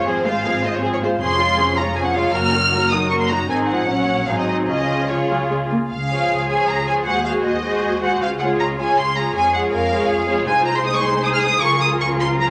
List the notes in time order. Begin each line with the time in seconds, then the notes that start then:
0.06 G#1 G#2 F3 C4 G#4 C5
0.25 G#3 F4 C5 F5
0.43 F3 C4 G#4
0.62 G#3 F4 C5 D#5
0.75 C#5
0.82 F3 C4 G#4 C5
0.93 C#5
1.01 G#3 F4 C5
1.20 F1 F2 F3 C#4 G#4 C6
1.39 G#3 F4 C#5
1.57 F3 C#4 G#4
1.75 G#3 F4 C#5 A#5
1.95 F3 C#4 G#4 G#5
2.05 F#5
2.15 G#3 F4 C#5 F5
2.33 F#1 F#2 F#3 A#3 F#4 A#4 F6
2.52 D#3 F#3 D#4 F#4
2.71 F#3 A#3 F#4 A#4
2.91 D#3 F#3 D#4 F#4 D#6
3.09 F#3 A#3 F#4 A#4 C#6
3.20 C6
3.29 D#3 F#3 D#4 F#4 A#5
3.49 G#1 G#2 D#3 C4 D#4 G#4 G#5
3.69 F3 F#5
3.87 A#1 A#2 F#3 C#4 C#5
4.27 G#1 G#2 F#3 C4 D#4 G#4 F5
4.38 D#5
4.48 D#5
4.68 C#2 C#3 F3 C#4 F4 G#4 D#5
5.08 F3 F4 G#4 C#5
5.31 F#3
5.51 G#3
5.71 A#3
5.89 C#2 G#4 F5
6.09 F3 F4 G#4 C#5
6.29 C#2
6.49 F3 F4 G#4 C#5 G#5
6.68 C#2 A#5
6.86 F3 F4 G#4 C#5 G#5
7.04 D#2 G#3 F#4 G#4 C5 F#5
7.25 G#3 F#4 G#4 C5 F5
7.43 D#2 F#4 D#5
7.63 G#3 F#4 G#4 C5
7.84 D#2
8.01 G#3 F#4 G#4 C5 F#5
8.21 C#2 F4 F5
8.39 G#3 F4 G#4 C#5 F#5
8.60 C#2 A#5
8.78 G#3 F4 G#4 C#5 G#5
8.97 C#2 F4 C6
9.15 G#3 F4 G#4 C#5 A#5
9.34 F2 G#3 F4 G#4 C#5 G#5
9.54 G#3 F4 G#4 C#5 F#5
9.72 F2 A#4 F5
9.91 G#3 F4 G#4 C#5
10.09 F2 G#4
10.28 G#3 F4 G#4 C#5
10.46 C2 G#3 D#4 F4 G#4 C5 G#5
10.65 A#5
10.76 C6
10.84 D#4 D#6
10.95 C#6
11.04 C6
11.22 G#4 D#6
11.34 F6
11.42 D#6
11.61 C#2 F3 F4 A#4 C#6
11.81 D#6
12.01 C#6
12.20 C6
12.40 A#5